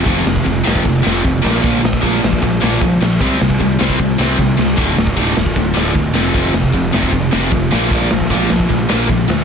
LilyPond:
<<
  \new Staff \with { instrumentName = "Distorted electric guitar" } { \clef bass \time 4/4 \key bes \lydian \tempo 4 = 152 <f, c f>8 <f, c>8 <f, c>8 <f, c f>8 <f, c>8 <f, c f>8 <f, c>8 <bes, f bes>8 | <bes, f bes>8 <bes, f>8 <bes, f bes>8 <bes, f>8 <bes, f>8 <bes, f bes>8 <bes, f>8 <bes, f>8 | <c g c'>8 <c g>8 <c g>8 <c g c'>8 <c g>8 <c g c'>8 <c g>8 <c g>8 | <d, a, d>8 <d, a,>8 <d, a, d>8 <d, a,>8 <d, a,>8 <d, a, d>8 <d, a,>8 <f, c f>8 |
<f, c f>8 <f, c>8 <f, c>8 <f, c f>8 <f, c>8 <f, c f>8 <f, c>8 <bes, f bes>8 | <bes, f bes>8 <bes, f>8 <bes, f bes>8 <bes, f>8 <bes, f>8 <bes, f bes>8 <bes, f>8 <bes, f>8 | }
  \new Staff \with { instrumentName = "Picked electric bass" } { \clef bass \time 4/4 \key bes \lydian f,,8 f,,8 f,,8 f,,8 f,,8 f,,8 f,,8 bes,,8 | bes,,8 bes,,8 bes,,8 bes,,8 bes,,8 bes,,8 bes,,8 bes,,8 | c,8 c,8 c,8 c,8 c,8 c,8 c,8 c,8 | d,,8 d,,8 d,,8 d,,8 d,,8 d,,8 d,,8 f,,8 |
f,,8 f,,8 f,,8 f,,8 f,,8 f,,8 f,,8 bes,,8 | bes,,8 bes,,8 bes,,8 bes,,8 bes,,8 bes,,8 bes,,8 d,8 | }
  \new DrumStaff \with { instrumentName = "Drums" } \drummode { \time 4/4 <hho bd>8 sn16 bd16 <hho bd>8 sn16 bd16 <hho bd>8 sn8 <hho bd>8 sn8 | <hho bd>8 sn16 bd16 <hho bd>8 sn16 bd16 <hho bd>8 sn8 <hho bd>8 sn8 | <hho bd>8 sn16 bd16 <hho bd>8 sn16 bd16 <hho bd>8 sn8 <bd sn>8 sn8 | <hho bd>8 sn16 bd16 <hho bd>8 sn16 bd16 <hho bd>8 sn8 <hho bd>8 sn8 |
<hho bd>8 sn16 bd16 <hho bd>8 sn16 bd16 <hho bd>8 sn8 <hho bd>8 sn8 | <hho bd>8 sn16 bd16 <hho bd>8 sn16 bd16 <hho bd>8 sn8 <hho bd>8 sn8 | }
>>